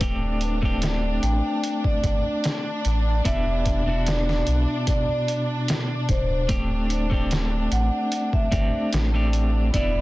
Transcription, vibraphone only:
1.23 G5
1.85 D5
3.26 E5
4.07 D5
4.89 D5
6.10 C5
7.72 F#5
8.34 E5
9.73 D5

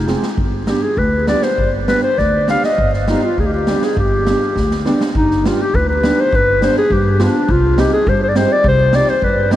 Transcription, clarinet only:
Already playing: D#4
0.67 G4
0.82 G#4
0.98 B4
1.29 D5
1.43 C5
1.88 B4
2.03 C5
2.18 D5
2.50 F5
2.65 D#5
3.10 D#4
3.24 F4
3.40 G#4
3.46 G4
3.53 G4
3.84 G#4
3.99 G4
5.17 D#4
5.46 F4
5.61 G4
5.75 B4
5.89 B4
6.20 C5
6.36 B4
6.63 C5
6.78 G#4
6.93 G4
7.23 D4
7.51 F4
7.80 G4
7.93 G#4
8.09 C5
8.23 C5
8.29 D5
8.37 C5
8.53 D5
8.68 C5
8.95 D5
9.09 C5
9.23 B4
9.52 G4

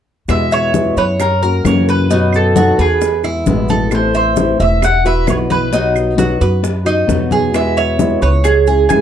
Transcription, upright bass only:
0.28 E2
0.97 F#2
1.65 F#2
2.79 E2
3.46 A1
4.60 E1
5.28 B1
6.41 F#2
7.09 E2
8.22 C#2
8.91 D2

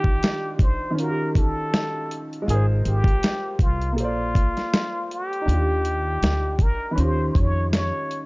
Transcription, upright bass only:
2.48 G#1
2.86 G#1
3.60 C2
3.98 A#1
5.48 D#2
6.22 D2
6.98 D#2
7.36 F2

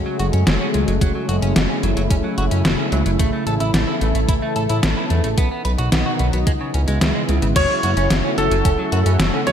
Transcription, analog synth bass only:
0.20 F#1
0.33 F#2
0.47 F#1
0.74 C#2
0.88 F#1
1.01 F#1
1.29 F#1
1.42 F#1
1.56 F#1
1.83 F#1
1.97 F#1
2.11 F#1
2.38 F#1
2.52 F#2
2.65 F#1
2.92 C#2
3.06 F#1
3.20 A1
3.47 A1
3.60 A1
3.74 A1
4.01 A1
4.15 A1
4.29 A1
4.56 A1
4.70 A2
4.83 A1
5.11 E2
5.24 A1
5.38 B1
5.65 B1
5.79 B1
5.92 B1
6.20 B1
6.33 B1
6.47 C#2
6.74 C#2
6.88 C#2
7.02 C#2
7.29 C#2
7.43 G#1
7.56 F#1
7.84 F#1
7.97 F#1
8.11 F#1
8.38 F#1
8.51 F#1
8.65 F#1
8.92 F#2
9.06 F#2
9.19 F#1
9.47 C#2

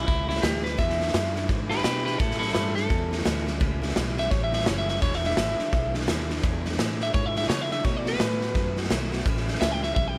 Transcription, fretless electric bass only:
0.08 C#2
0.43 D2
0.79 E2
1.14 F#2
1.49 G#2
1.84 B2
2.20 A2
2.55 G2
2.90 E2
3.26 D2
3.61 C#2
3.96 B1
4.32 A1
4.67 F#1
5.02 E1
5.37 G#1
5.73 B1
6.08 D#2
6.43 E2
6.79 A2
7.14 G#2
7.49 C#3
7.85 B2
8.20 A2
8.55 F#2
8.90 B1
9.26 A1
9.61 C#2
9.96 B1

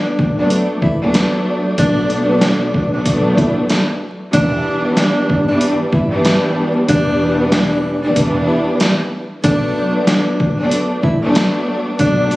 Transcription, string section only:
Already playing: F#3 A3 B3 D4
0.39 F#3 A3 B3 D4
1.01 F#3 A3 B3 D4
1.77 F#3 A3 B3 D4
2.93 F#3 A3 B3 D4
4.32 E3 G3 B3 D4
5.47 E3 G3 B3 D4
6.11 E3 G3 B3 D4
6.87 E3 G3 B3 D4
8.03 E3 G3 B3 D4
9.44 F#3 A3 B3 D4
10.60 F#3 A3 B3 D4
11.22 F#3 A3 B3 D4
11.99 F#3 A3 B3 D4

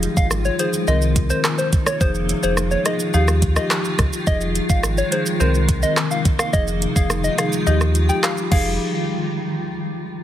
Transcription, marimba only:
Already playing: F3 D#4 G#4
0.59 F3 D#4 G#4
0.87 D#3 C4 A#4
1.30 D#3 C4 A#4
2.01 F3 D#4 G#4
2.43 F3 D#4 G#4
2.85 F3 D#4 G#4
3.14 F3 D#4 G4
3.56 F3 D#4 G4
4.27 F3 D#4 G#4
5.12 F3 D#4 G#4
5.40 D#3 C4 A#4
5.82 D#3 C4 A#4
6.53 F3 D#4 G#4
6.96 F3 D#4 G#4
7.38 F3 D#4 G#4
7.67 F3 D#4 G4
8.09 F3 D#4 G4
8.51 F3 D#4 G#4

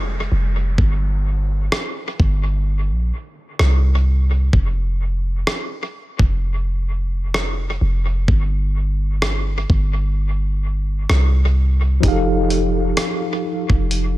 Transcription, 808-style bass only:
Already playing: F1
0.32 F1
0.78 G1
2.20 G1
2.91 A#1
3.60 C2
4.53 F1
6.19 F1
7.81 F1
8.28 G1
9.70 G1
11.10 C2
12.03 F1
13.70 F1

